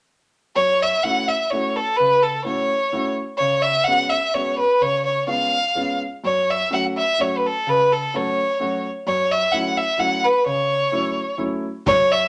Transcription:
0.56 F#2 C#5
0.82 E5
1.03 A3 C#4 E4 F#4 F#5
1.28 E5
1.50 A3 C#4 E4 F#4 C#5
1.76 A4
1.97 C#3 B4
2.23 A4
2.44 A3 C#4 E4 F#4 C#5
2.92 A3 C#4 E4 F#4
3.38 C#3 C#5
3.62 E5
3.84 G#3 B3 F#4 F#5
3.88 C#4
4.09 E5
4.34 G#3 B3 C#4 F#4 C#5
4.58 B4
4.81 C#3 C#5
5.06 C#5
5.27 G#3 B3 C#4 F4 F5
5.75 G#3 B3 C#4 F4
6.24 F#2 C#5
6.50 E5
6.70 F#3 A3 C#4 F#4 F#5
6.97 E5
7.18 F#3 A3 C#4 F#4 C#5
7.37 B4
7.46 A4
7.67 C#3 B4
7.93 A4
8.14 F#3 A3 C#4 F#4 C#5
8.60 F#3 A3 C#4 F#4
9.07 F#2 C#5
9.31 E5
9.52 F#3 A3 C#4 E4 F#5
9.77 E5
9.98 F#3 A3 C#4 E4 F#5
10.24 B4
10.46 C#3 C#5
10.92 F#3 A3 C#4 E4
11.38 F#3 A3 C#4 E4
11.86 F#2 C#5, kick, ride
12.12 E5

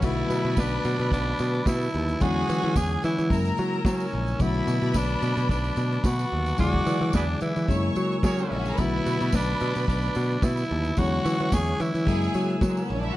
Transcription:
0.00 B1 D3 F#3 A3 B3 F#4 B4 A5 B5, kick, crash, tambourine
0.05 E4
0.18 closed hi-hat
0.30 B2, closed hi-hat, tambourine
0.45 B2, closed hi-hat
0.57 B1 D4, kick, snare, tambourine
0.84 B2, closed hi-hat, tambourine
0.99 B2, closed hi-hat
1.12 B1 D4, kick, closed hi-hat, tambourine
1.27 snare
1.38 B2, closed hi-hat, tambourine
1.55 closed hi-hat
1.66 B2 E4, kick, snare, tambourine
1.81 closed hi-hat, tambourine
1.94 D#2, open hi-hat
2.08 closed hi-hat, tambourine
2.20 E2 D3 F#3 G#3 C#4 E4 F#4 G#4 C#5 F#5 G#5, kick, closed hi-hat, tambourine
2.49 E3, closed hi-hat, tambourine
2.63 E3, closed hi-hat
2.76 E2 G#4, kick, snare, tambourine
3.03 E3 E4, closed hi-hat, tambourine
3.18 E3, closed hi-hat, tambourine
3.29 F#2 C#3 F#3 G#3 A#3 E4 A#4 A#5 E6, kick, closed hi-hat, tambourine
3.45 snare, closed hi-hat, tambourine
3.57 F#3, closed hi-hat, tambourine
3.73 closed hi-hat
3.85 F#3 C#4, kick, snare, tambourine
4.00 tambourine
4.12 A#1, open hi-hat
4.27 closed hi-hat, tambourine
4.39 B1 C#3 F#3 A3 B3 E4 F#4 B4 A5 B5 D6, kick, closed hi-hat, tambourine
4.45 D3
4.54 closed hi-hat
4.67 B2, closed hi-hat, tambourine
4.82 B2, closed hi-hat
4.94 B1 D4, kick, snare, tambourine
5.21 B2, closed hi-hat, tambourine
5.37 B2, closed hi-hat, tambourine
5.49 B1 D4, kick, closed hi-hat, tambourine
5.64 tambourine
5.76 B2, closed hi-hat, tambourine
5.92 closed hi-hat
6.04 B2 F#4, kick, snare, tambourine
6.19 tambourine
6.31 D#2, open hi-hat
6.46 closed hi-hat, tambourine
6.57 E2 C#3 D3 F#3 G#3 E4 F#4 G#4 D5 F#5 G#5 D6, kick, closed hi-hat, tambourine
6.74 kick
6.86 E3, closed hi-hat, tambourine
7.01 E3, closed hi-hat
7.13 E2 D4 F#4 G#4 B4, kick, snare, tambourine
7.29 closed hi-hat
7.41 E3 E4, closed hi-hat, tambourine
7.56 E3, closed hi-hat, tambourine
7.68 F#2 C#3 F#3 G#3 A#3 D4 A#4 C#5 G#5 C#6 E6, kick, closed hi-hat, tambourine
7.77 E4
7.84 snare, closed hi-hat
7.95 F#3, closed hi-hat, tambourine
8.12 closed hi-hat
8.23 F#3 C#4 G#4 A#4 C#5, kick, snare, tambourine
8.37 C#4 C#5, closed hi-hat, tambourine
8.44 D4 D5
8.51 A#1 E4 E5, open hi-hat
8.58 F#4 F#5
8.64 G#4 G#5, closed hi-hat, tambourine
8.71 A#4 A#5
8.78 B1 C#3 F#3 A3 B3 E4 F#4 B4 A5 B5, kick, closed hi-hat, tambourine
8.84 D3
9.06 B2, closed hi-hat, tambourine
9.21 B2, closed hi-hat, tambourine
9.33 B1 D4, kick, snare, tambourine
9.49 closed hi-hat
9.60 B2, closed hi-hat, tambourine
9.75 B2, closed hi-hat, tambourine
9.88 B1 D4, kick, closed hi-hat, tambourine
10.02 snare, tambourine
10.15 B2, closed hi-hat, tambourine
10.31 closed hi-hat
10.42 B2 E4, kick, snare, tambourine
10.57 closed hi-hat, tambourine
10.70 D#2, open hi-hat
10.84 closed hi-hat, tambourine
10.96 E2 D3 F#3 G#3 C#4 E4 F#4 C#5 F#5 G#5 C#6, kick, closed hi-hat, tambourine
11.25 E3, closed hi-hat, tambourine
11.40 E3, closed hi-hat
11.52 E2 G#4, kick, snare, tambourine
11.79 E3 E4, closed hi-hat, tambourine
11.95 E3, closed hi-hat, tambourine
12.06 F#2 C#3 F#3 G#3 A#3 E4 G#4 A#4 G#5 E6, kick, closed hi-hat, tambourine
12.22 tambourine
12.34 F#3, closed hi-hat, tambourine
12.50 closed hi-hat
12.61 F#3, kick, snare, tambourine
12.70 G#3 G#4
12.76 A#3 A#4, tambourine
12.83 B3 B4
12.89 A#1 C#4 C#5, open hi-hat
12.98 D4 D5
13.03 E4 E5, closed hi-hat
13.12 F#4 F#5

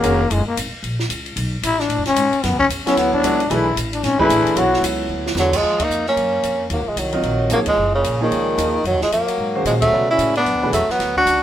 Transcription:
Already playing: A#3
0.02 F1 D#3 G#3 C#4 F#4 A#4, hi-hat pedal, ride
0.30 F#1 G#3, ride
0.47 A#3
0.57 G#1, hi-hat pedal, ride
0.72 muted upright bass stroke
0.83 A#1, ride
0.99 snare
1.09 C#2, hi-hat pedal, ride
1.26 ride
1.36 B1, ride
1.62 A1 E4, hi-hat pedal, ride
1.79 D4, snare
1.89 A2, ride
1.98 F#2
2.05 D2 C#4, snare, ride
2.16 G#2, hi-hat pedal, ride
2.33 muted upright bass stroke, ride
2.44 F#2 B3, snare, ride
2.53 D2
2.59 B1 C#4, kick
2.69 E2, hi-hat pedal, ride
2.86 F#3 B3 C#4 E4 A4 C#5, muted upright bass stroke, snare, ride
2.96 D2 B3, snare, ride
3.13 D4, kick
3.23 C#2 F#3 B3 E4 A4 C#5, hi-hat pedal, ride
3.40 ride
3.50 B1 E3 A3 D4 E4 G#4 B4, ride
3.76 A1, hi-hat pedal, ride
3.93 D4, ride
4.03 G#1 C#4, snare, ride
4.19 E3 A3 D4 E4 G#4 B4, kick
4.29 A1, hi-hat pedal, ride
4.46 muted upright bass stroke, ride
4.56 B1 F#3 B3 E4 F#4 A4 C#5, ride
4.74 snare
4.82 C#2, hi-hat pedal, ride
5.09 D2
5.26 snare
5.35 E2 D3, snare, hi-hat pedal
5.40 F#3
5.53 G#3, kick, crash
5.57 F3
5.62 D#2
5.79 A#3 D#4, muted upright bass stroke, kick, ride
5.89 F2, hi-hat pedal
6.06 A#3 C#4, snare
6.16 F#2, ride
6.43 F2, hi-hat pedal, ride
6.70 D#2 F#3 A#3, ride
6.79 C#2
6.86 A#1 F3 G#3
6.96 C2 D#3 F#3, hi-hat pedal, ride
7.12 F#3 C4 F4 A#4 D#5, ride
7.22 A#1, ride
7.49 G#1 F3 F#3 A#3 D#4 G#4 C#5, hi-hat pedal, ride
7.66 F3 G#3, kick, ride
7.77 F#1
7.95 A#2 C#3
8.04 A#1, hi-hat pedal, ride
8.21 A#2 D#3 F3 A#3 D#4 G#4 C#5
8.31 C#2, ride
8.58 D#2 F3 A#3 D#4 G#4 D#5, hi-hat pedal, ride
8.84 F#2 D#3 F#3, ride
8.93 D#2
9.01 C#2 F3 G#3, snare
9.11 F2 F#3 A#3, hi-hat pedal, ride
9.27 muted upright bass stroke, ride
9.38 G#2
9.55 D#3 G#3 C#4 F#4 C5
9.65 A#2 F3 G#3, hi-hat pedal, ride
9.81 A3, kick, ride
9.85 F#3
9.91 B2 C#3 G#3 F#4 B4 D5
10.10 C#4 E4
10.18 A2, hi-hat pedal, ride
10.35 B3 D4, ride
10.45 F#2, ride
10.54 D2
10.62 B1 E3 A3 D4 G#4 B4
10.72 E2 F#3 A3, hi-hat pedal, ride
10.89 F#3 B3, muted upright bass stroke, snare
10.99 D2, snare, ride
11.16 D4 F#4, kick
11.26 C#2, hi-hat pedal, ride

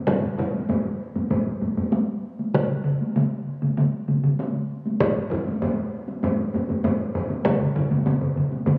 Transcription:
0.07 taiko, taiko low-mid, taiko high
0.23 taiko low-mid
0.38 taiko, taiko low-mid
0.54 taiko high
0.69 taiko low-mid, taiko high
1.16 taiko low-mid, taiko high
1.31 taiko low-mid, taiko high
1.62 taiko low-mid, taiko high
1.77 taiko low-mid, taiko high
1.92 taiko high
2.39 taiko high
2.54 taiko, taiko mid, taiko high
2.69 taiko mid
2.84 taiko mid
3.01 taiko high
3.16 taiko mid, taiko high
3.62 taiko mid, taiko high
3.77 taiko mid, taiko high
4.08 taiko mid, taiko high
4.23 taiko mid, taiko high
4.39 taiko high
4.86 taiko high
5.00 taiko, taiko low-mid, taiko high
5.16 taiko low-mid
5.31 taiko, taiko low-mid
5.47 taiko high
5.62 taiko low-mid, taiko high
6.08 taiko high
6.23 taiko low-mid, taiko high
6.54 taiko low-mid, taiko high
6.69 taiko low-mid, taiko high
6.84 taiko low-mid, taiko high
7.15 taiko low-mid
7.30 taiko high
7.45 taiko, taiko low-mid, taiko mid, taiko high
7.60 taiko low-mid, taiko mid
7.75 taiko, taiko low-mid, taiko mid
7.91 taiko low-mid, taiko mid, taiko high
8.06 taiko low-mid, taiko mid, taiko high
8.21 taiko low-mid, taiko mid
8.36 taiko low-mid, taiko mid
8.52 taiko high
8.66 taiko low-mid, taiko mid, taiko high

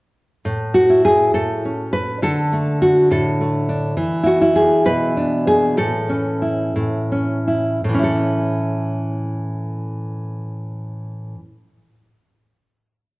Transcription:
0.45 A2
0.74 F#4
0.90 E4
1.05 G#4
1.34 A2 A4
1.65 C#4
1.93 B4
2.23 D3 A4
2.53 A3
2.82 F#4
3.11 A2 A4
3.41 A3
3.69 D4
3.97 E3
4.24 E4 F#4
4.42 E4
4.56 G#4
4.85 B2 B4
5.17 D4
5.47 G#4
5.77 A2 A4
6.10 C#4
6.42 E4
6.76 A2
7.12 C#4
7.47 E4
7.84 A2
7.89 E3
7.94 C#4
7.99 E4
8.03 A4

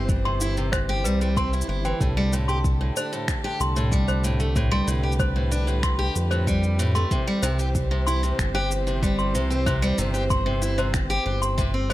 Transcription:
Already playing: G1 E3 C4 G4 C5
0.09 kick, cabasa
0.25 C3 C6
0.41 E4, cabasa
0.57 C3, cabasa
0.72 C5, finger snap, kick, cabasa
0.89 G4
1.04 C2 G3 B4, cabasa
1.21 G3, cabasa
1.37 C4 C6, kick, cabasa
1.53 E4, cabasa
1.61 cabasa
1.68 G1 E4
1.85 E3 G5, cabasa
2.00 C2 A2 D3 A3 G4 A4, kick, cabasa
2.17 G3
2.33 A2, cabasa
2.48 G4 C6, cabasa
2.64 kick, cabasa
2.81 A2
2.97 D4 C5, cabasa
3.13 A2, cabasa
3.28 finger snap, kick, cabasa
3.44 G4
3.60 C2 C6, cabasa
3.76 A2, cabasa
3.92 G3, kick, cabasa
4.08 C5, cabasa
4.24 A2, cabasa
4.40 A3, cabasa
4.56 A2 B4, kick, cabasa
4.71 G3 C6
4.87 C2 A2, cabasa
5.03 G4
5.12 cabasa
5.19 C5, kick, cabasa
5.36 A2
5.51 D4, cabasa
5.67 A2, cabasa
5.83 C6, finger snap, kick, cabasa
5.99 G4
6.15 F2, cabasa
6.31 A2 C5, cabasa
6.47 G3, kick, cabasa
6.63 cabasa
6.79 A2, cabasa
6.95 A3 C6, cabasa
7.11 C3 E3 C4 C5, kick, cabasa
7.27 G3
7.42 C2 C3 C5, cabasa
7.59 G4, cabasa
7.75 kick, cabasa
7.91 C3
8.07 E4 C6, cabasa
8.23 C3, cabasa
8.39 G1, finger snap, kick, cabasa
8.55 G4 C5
8.71 cabasa
8.87 C3, cabasa
9.03 G3, kick, cabasa
9.19 C6, cabasa
9.35 C2 C3, cabasa
9.50 C4, cabasa
9.66 C3 C5, kick, cabasa
9.82 G3, cabasa
9.98 G1 C3, cabasa
10.14 G4, cabasa
10.30 C6, kick, cabasa
10.46 C3
10.62 E4, cabasa
10.78 C3 C5, cabasa
10.94 G1, finger snap, kick, cabasa
11.10 G4, cabasa
11.26 G1 G4
11.42 C6, cabasa
11.58 C3, kick, cabasa
11.74 C4
11.90 G3 C5

